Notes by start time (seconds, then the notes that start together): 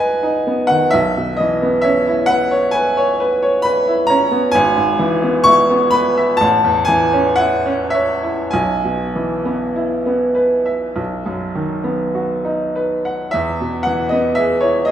Already playing: B1 B3 D#4 D#5 F#5 G#5 A#5 B5
0.00 B4
0.23 D#4
0.47 B3
0.67 D#3 F#5
0.91 B1 E5
1.17 B2
1.37 E3 D#5
1.62 B3
1.82 C#4 E5
2.07 E4
2.26 B4 F#5
2.51 C#5
2.71 B4 G#5
2.97 C#5
3.20 B4
3.43 C#5
3.62 B4 B5
3.87 E4
4.07 C#4 A#5
4.32 B3
4.52 G#1 G#5
4.76 G#2
4.99 E3
5.24 B3
5.44 E4 C#6
5.71 B3
5.91 B4 B5
6.17 E5
6.37 A1 A5
6.64 E2
6.85 E3 G#5
7.13 C#4
7.36 E4 F#5
7.66 C#4
7.90 C#5 E5
8.23 E4
8.51 B1 G#5
8.84 B2
9.16 E3
9.45 B3
9.76 E4
10.06 B3
10.35 B4
10.66 E5
10.96 B1
11.26 F#2
11.55 D#3
11.84 B3
12.15 F#4
12.45 D#4
12.76 B4
13.05 F#5
13.31 E2 E5
13.61 B2
13.83 E3 F#5
14.09 B3 D#5
14.35 G#4 E5
14.61 E4 C#5
14.85 G#4 D#5